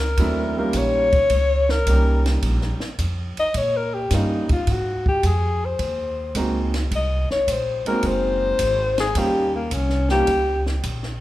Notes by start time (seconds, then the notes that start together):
Already playing: C#2 A#4
0.17 D#2 F#3 A3 C4 D4 E4, kick, ride
0.57 G3 A#3 C#4 D#4 F4 A#4
0.73 A#1 C#5, kick, hi-hat pedal, ride
1.12 kick, ride
1.30 C#2, kick, ride
1.69 A#4, snare
1.86 C2 G3 A#3 C#4 D#4 G4, kick, hi-hat pedal, ride
2.26 snare, ride
2.42 A#1, kick, ride
2.61 snare
2.80 muted upright bass stroke, snare
2.99 F2, kick, hi-hat pedal, ride
3.37 D#5, muted upright bass stroke, ride
3.54 A#2 C#5, kick, ride
3.77 A#4
3.94 G4
4.11 G2 G3 A#3 C#4 D#4 F4, kick, snare, hi-hat pedal, ride
4.49 F4, muted upright bass stroke, kick, ride
4.67 G#2, kick, ride
4.72 F#4
5.06 G4, kick
5.23 F2 G#4, kick, hi-hat pedal, ride
5.65 C5
5.79 D#2, kick, ride
6.35 C#2 G#3 A#3 C4 D#4 F#4, kick, hi-hat pedal, ride
6.74 snare, ride
6.91 C2, kick, ride
6.96 D#5
7.30 C#5, muted upright bass stroke, snare
7.47 A#1 C5, kick, hi-hat pedal, ride
7.85 G#3 A#3 C4 D#4 F#4 A#4, muted upright bass stroke, ride
8.03 F#1 C5, kick, ride
8.59 G#1, kick, hi-hat pedal, ride
8.98 G#4, snare, ride
9.15 D#2 G3 A#3 C#4 D#4 F4 G4, kick, ride
9.55 A#3
9.71 C2 C#4, kick, hi-hat pedal, ride
9.90 snare
10.09 G3 A#3 C#4 D#4 F4 G4, snare
10.27 C#2, kick, ride
10.66 snare
10.83 A#1, kick, hi-hat pedal, ride
11.03 snare